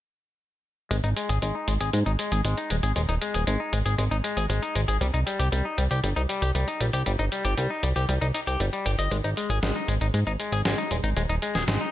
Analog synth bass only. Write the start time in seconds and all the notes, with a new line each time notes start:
0.91 G#1
1.04 G#1
1.29 G#1
1.42 G#1
1.68 G#1
1.81 G#1
1.93 G#2
2.06 G#1
2.32 G#1
2.45 G#1
2.70 D#1
2.83 G#1
2.96 D#1
3.09 D#1
3.34 D#1
3.47 G#1
3.73 G#1
3.86 G#1
3.98 G#1
4.11 G#1
4.37 G#1
4.50 G#1
4.76 G#1
4.88 G#1
5.01 C2
5.14 C2
5.40 C2
5.52 C2
5.78 C2
5.91 C2
6.04 G1
6.17 C2
6.42 C2
6.55 C2
6.81 A#1
6.94 C2
7.06 G1
7.19 G1
7.45 G1
7.58 C2
7.83 C2
7.96 C2
8.09 C2
8.22 C2
8.47 C2
8.60 G1
8.86 G1
8.99 G1
9.11 G#1
9.24 G#1
9.50 G#1
9.63 G#1
9.88 G#1
10.01 G#1
10.14 G#2
10.27 G#1
10.52 G#1
10.65 G#1
10.91 D#1
11.04 G#1
11.17 D#1
11.29 D#1
11.55 D#1
11.68 G#1